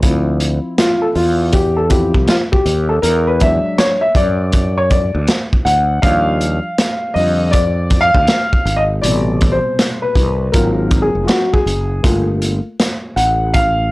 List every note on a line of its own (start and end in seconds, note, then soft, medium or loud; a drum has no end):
0.02 0.58 D2 loud
0.02 1.11 F3 medium
0.02 1.11 C4 soft
0.02 1.12 E4 medium
0.02 kick loud
0.02 closed hi-hat medium
0.40 closed hi-hat medium
0.78 1.03 F4 medium
0.78 snare loud
0.78 closed hi-hat loud
1.02 1.07 A4 medium
1.15 2.11 E2 medium
1.15 1.54 F4 medium
1.15 open hi-hat medium
1.53 1.78 G4 medium
1.53 kick medium
1.53 closed hi-hat medium
1.77 1.90 A4 medium
1.89 2.24 F3 medium
1.89 2.24 C4 soft
1.89 2.24 E4 medium
1.89 2.29 G4 medium
1.89 kick medium
1.89 closed hi-hat medium
2.14 2.27 C2 medium
2.14 kick medium
2.28 2.33 F4 medium
2.28 snare loud
2.28 closed hi-hat medium
2.52 2.91 G4 medium
2.52 kick medium
2.65 2.99 D#2 medium
2.65 closed hi-hat medium
2.89 2.94 A4 medium
3.02 3.58 E2 loud
3.02 3.28 A#4 loud
3.02 closed hi-hat medium
3.27 3.41 B4 medium
3.40 3.95 F#3 medium
3.40 3.95 G#3 soft
3.40 3.95 D4 medium
3.40 3.76 E5 loud
3.40 kick medium
3.40 closed hi-hat medium
3.78 4.01 C#5 loud
3.78 snare loud
3.78 closed hi-hat loud
4.01 4.16 E5 loud
4.15 5.10 F#2 medium
4.15 4.79 D5 loud
4.15 kick loud
4.15 closed hi-hat medium
4.52 kick loud
4.52 closed hi-hat medium
4.78 4.90 C#5 medium
4.90 5.25 D5 medium
4.90 kick medium
4.90 closed hi-hat medium
5.15 5.27 D2 medium
5.28 snare loud
5.28 closed hi-hat medium
5.53 kick medium
5.65 5.99 D2 medium
5.65 6.04 F#5 loud
5.65 closed hi-hat medium
6.02 6.58 D#2 loud
6.02 6.56 F3 medium
6.02 6.57 G3 soft
6.02 6.57 D4 medium
6.02 7.19 F5 loud
6.02 kick loud
6.02 closed hi-hat medium
6.41 closed hi-hat medium
6.78 snare loud
6.78 closed hi-hat loud
7.14 8.11 F2 medium
7.14 7.49 D3 medium
7.14 7.49 F3 soft
7.14 7.49 G3 soft
7.14 7.50 D#5 loud
7.14 open hi-hat medium
7.51 8.04 D5 loud
7.51 kick loud
7.51 closed hi-hat medium
7.90 kick medium
7.90 closed hi-hat medium
8.01 8.79 F5 loud
8.14 8.27 D2 medium
8.14 kick medium
8.27 snare loud
8.27 closed hi-hat medium
8.53 kick medium
8.65 8.99 G#1 medium
8.65 closed hi-hat medium
8.76 8.82 D#5 loud
9.02 9.58 A1 loud
9.02 10.12 B2 medium
9.02 10.11 C3 medium
9.02 10.12 G3 soft
9.02 9.54 D5 medium
9.02 closed hi-hat medium
9.41 kick medium
9.41 closed hi-hat medium
9.52 10.04 C5 medium
9.79 snare loud
9.79 closed hi-hat loud
10.02 10.54 B4 medium
10.15 10.49 C2 medium
10.15 kick loud
10.15 closed hi-hat medium
10.52 11.09 G#1 loud
10.52 11.61 F#3 medium
10.52 11.62 A#3 medium
10.52 11.62 C4 medium
10.52 11.23 F4 medium
10.52 11.04 A#4 medium
10.52 kick loud
10.52 closed hi-hat medium
10.91 kick loud
10.91 closed hi-hat medium
11.02 11.24 G#4 medium
11.15 11.27 F1 medium
11.24 11.29 F4 medium
11.24 11.54 F#4 medium
11.28 snare loud
11.28 closed hi-hat medium
11.53 12.24 G#4 medium
11.53 kick medium
11.66 12.00 F#1 medium
11.66 closed hi-hat medium
12.02 12.59 G1 loud
12.02 12.57 A3 medium
12.02 12.57 A#3 soft
12.02 12.57 F4 medium
12.02 kick loud
12.02 closed hi-hat medium
12.42 closed hi-hat medium
12.80 snare loud
12.80 closed hi-hat loud
13.16 13.92 A1 medium
13.16 13.55 F#5 medium
13.16 closed hi-hat medium
13.54 13.92 F5 loud
13.54 kick medium
13.54 closed hi-hat medium